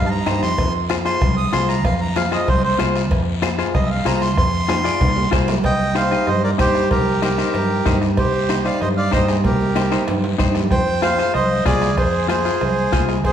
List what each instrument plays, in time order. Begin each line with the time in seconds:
Already playing: fingered electric bass G2, accordion F5
0.06 accordion A5
0.11 accordion A#5
0.26 fingered electric bass G2, clean electric guitar D#4 G4 C5, bombo rim, cowbell, high conga, low timbale, short guiro
0.43 fingered electric bass F2, accordion C6, bombo rim, short guiro
0.58 fingered electric bass F2, bombo low, bombo rim, cowbell, high conga
0.89 clean electric guitar F4 G#4 C5, bombo rim, cowbell, high conga, short guiro
1.05 clean electric guitar F4 G#4 C5, accordion C6, bombo rim, short guiro
1.21 fingered electric bass C2, bombo low, bombo rim, cowbell, high conga, low conga, long guiro
1.37 accordion D#6
1.53 fingered electric bass C2, clean electric guitar F4 G#4 C5, accordion C6, bombo rim, cowbell, high conga, short guiro
1.69 accordion A#5, bombo rim, short guiro
1.85 fingered electric bass F2, accordion F5, bombo low, bombo rim, cowbell, high conga, low conga, long guiro
2.01 accordion A#5
2.16 clean electric guitar F4 G#4 C5, accordion F5, bombo rim, cowbell, high conga, short guiro
2.32 clean electric guitar F4 G#4 C5, accordion D#5, bombo rim, short guiro
2.48 fingered electric bass C2, accordion C5, bombo low, bombo rim, cowbell, high conga, low conga, long guiro
2.64 accordion C5
2.79 fingered electric bass C2, clean electric guitar F4 G#4 C5, bombo rim, cowbell, high conga, short guiro
2.96 bombo rim, short guiro
3.11 fingered electric bass F2, bombo low, bombo rim, cowbell, high conga, long guiro
3.42 clean electric guitar F4 G#4 C5, bombo rim, cowbell, high conga, short guiro
3.58 clean electric guitar F4 G#4 C5, bombo rim, short guiro
3.74 fingered electric bass C2, accordion D#5, bombo low, bombo rim, cowbell, high conga, low conga, long guiro
3.86 accordion E5
3.90 accordion F5
4.05 fingered electric bass C2, clean electric guitar F4 G#4 C5, accordion A#5, bombo rim, cowbell, high conga, short guiro
4.22 accordion C6, bombo rim, short guiro
4.37 fingered electric bass F2, accordion C6, bombo low, bombo rim, cowbell, high conga, long guiro
4.68 clean electric guitar F4 G#4 C5, bombo rim, cowbell, high conga, high timbale, short guiro
4.84 clean electric guitar F4 G#4 D5, bombo rim, short guiro
5.01 fingered electric bass C2, bombo low, bombo rim, cowbell, high conga, high timbale, long guiro
5.16 low timbale
5.31 fingered electric bass C2, clean electric guitar F4 G#4 C5, bombo low, bombo rim, cowbell, low timbale, short guiro
5.48 bombo rim, low conga, low timbale, short guiro
5.64 fingered electric bass C2, accordion D#5 G5, bombo low, bombo rim, cowbell, high conga, long guiro
5.95 clean electric guitar D#4 G4 C5, accordion C5 F5, bombo rim, cowbell, high conga, short guiro
6.11 clean electric guitar D#4 G4 D#5, bombo rim, short guiro
6.27 fingered electric bass G2, accordion C5 D#5, bombo rim, cowbell, high conga, low conga, long guiro
6.44 accordion A#4 D5
6.58 fingered electric bass G2, clean electric guitar D#4 G4 C5, accordion G4 C5, bombo low, bombo rim, cowbell, high conga, low timbale, short guiro
6.75 bombo rim, short guiro
6.91 fingered electric bass C2, accordion G4 A#4, bombo low, bombo rim, cowbell, high conga, low conga, long guiro
7.22 clean electric guitar D#4 G4 C5, accordion G4 A#4, bombo rim, cowbell, high conga, short guiro
7.38 clean electric guitar D#4 G4 C5, bombo rim, short guiro
7.54 fingered electric bass G2, bombo rim, cowbell, high conga, low conga, long guiro
7.86 fingered electric bass G2, clean electric guitar D#4 G4 C5, bombo low, bombo rim, cowbell, high conga, low conga, low timbale, short guiro
8.02 bombo rim, short guiro
8.17 fingered electric bass C2, accordion G4 C5, bombo low, bombo rim, cowbell, high conga, long guiro
8.49 clean electric guitar D#4 G4 C5, bombo rim, cowbell, high conga, short guiro
8.65 clean electric guitar D#4 G4 C5, accordion D5 F5, bombo rim, short guiro
8.81 fingered electric bass G2, accordion C5 D#5, bombo rim, cowbell, high conga, low conga, long guiro
8.97 accordion D5 F5
9.11 fingered electric bass G2, clean electric guitar D#4 G4 C5, accordion C5 D#5, bombo low, bombo rim, cowbell, high conga, low timbale, short guiro
9.28 accordion G#4 C5, bombo rim, short guiro
9.44 fingered electric bass C2, accordion G4 A#4, bombo low, bombo rim, cowbell, high conga, long guiro
9.61 high conga
9.75 clean electric guitar D#4 G4 C5, bombo rim, cowbell, high conga, short guiro
9.91 clean electric guitar D#4 G4 C5, bombo rim, high conga, high timbale, short guiro
10.07 fingered electric bass G2, bombo rim, cowbell, low conga, high timbale, long guiro
10.24 low conga, high timbale
10.38 fingered electric bass G2, clean electric guitar D#4 G4 C5, bombo low, bombo rim, cowbell, low timbale, short guiro
10.55 bombo rim, low conga, low timbale, short guiro
10.71 fingered electric bass F2, accordion C5 G5, bombo low, bombo rim, cowbell, high conga, long guiro
11.02 clean electric guitar F4 G#4 C5, accordion C5 F5, bombo rim, cowbell, high conga, short guiro
11.18 clean electric guitar F4 G#4 C5, bombo rim, short guiro
11.34 fingered electric bass C2, accordion C5 D#5, bombo rim, cowbell, high conga, low conga, long guiro
11.65 fingered electric bass C2, clean electric guitar F4 G#4 C5, accordion G#4 D5, bombo low, bombo rim, cowbell, high conga, low timbale, short guiro
11.82 bombo rim, short guiro
11.97 fingered electric bass F2, accordion G#4 C5, bombo low, bombo rim, cowbell, long guiro
12.28 clean electric guitar F4 G#4 C5, accordion G#4 C5, bombo rim, cowbell, high conga, short guiro
12.45 clean electric guitar F4 G#4 C5, bombo rim, short guiro
12.61 fingered electric bass C2, bombo rim, cowbell, high conga, low conga, long guiro
12.92 fingered electric bass C2, clean electric guitar F4 G#4 C5, bombo low, bombo rim, cowbell, high conga, low timbale, short guiro
13.09 bombo rim, short guiro
13.24 fingered electric bass F2, accordion G#4 C5, bombo low, bombo rim, cowbell, long guiro